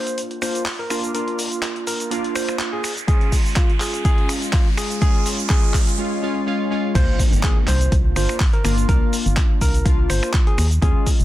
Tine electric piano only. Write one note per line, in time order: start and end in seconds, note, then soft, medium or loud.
0.00 0.20 C5 medium
0.42 0.62 C5 medium
0.79 0.98 A#4 medium
1.15 1.41 A#4 medium
1.87 2.13 A#4 medium
2.35 2.55 C5 medium
2.73 2.92 G#4 medium
3.08 3.34 G#4 medium
3.56 3.70 F4 medium
3.81 4.03 G#4 medium
4.05 4.31 G#4 loud
4.53 4.67 F4 medium
4.77 5.00 G#4 medium
5.02 5.28 G#4 loud
5.50 5.76 G#4 loud
6.95 7.21 C5 loud
7.44 7.58 G#4 medium
7.68 7.94 C5 medium
8.16 8.36 C5 medium
8.53 8.73 A#4 medium
8.89 9.15 A#4 loud
9.61 9.88 A#4 loud
10.10 10.30 C5 loud
10.47 10.66 G#4 loud
10.82 11.09 G#4 loud